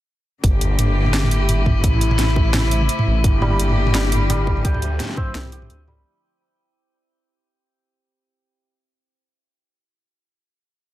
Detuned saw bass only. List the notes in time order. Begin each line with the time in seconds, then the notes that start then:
0.44 G1
0.79 G1
1.49 G1
1.84 A1
2.19 A1
3.07 A1
3.24 G1
3.59 G1
4.29 G1
4.65 D2
5.35 C2
5.70 D2